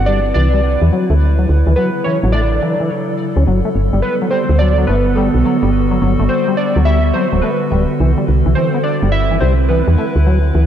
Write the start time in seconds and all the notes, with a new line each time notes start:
Already playing: G1 D3 G3 C4 E4 B4
0.06 G3 D5
0.34 C2 E3 D5
0.53 G3
0.82 E2 E3
0.93 F#3
1.10 D2 A3
1.33 C#3
1.38 F#3
1.46 D2 F#3
1.67 D2 E3
1.76 F#3 B4
2.04 E3 A4 C#5
2.23 A1 F#3
2.32 A3 D5
2.62 E3
2.80 E3
3.36 D2 C#4
3.47 G1 D3 F#3
3.59 G3
3.65 A3
3.74 G1 B3
3.93 G1 G3
4.02 B4
4.21 F#3
4.31 G3 C5
4.48 D2 F#4
4.59 F#3 D5
4.78 F#3
4.87 G1 A3 B4
5.16 G3 A4
5.34 B1
5.45 F#3
5.63 G1 G3
5.91 F#3
6.02 G1 F#3
6.19 G1 A3
6.29 C5
6.48 G3
6.57 D5
6.76 D2 F#3
6.85 G3 E5
7.14 F#3 C5
7.33 D1 F#3
7.42 A3 B4
7.72 D1 G3
8.00 C2 E3
8.18 G3
8.28 C2
8.46 C2 E3
8.55 E3 C5
8.74 B3
8.84 D5
8.90 C4 E4 B4
9.03 G1 G3
9.12 E5
9.31 E3
9.40 C2 G3 C5
9.69 E3 B4
9.87 E2 E3
9.98 A3
10.16 D2
10.26 F#3
10.38 F#3 C#4
10.55 D2 E3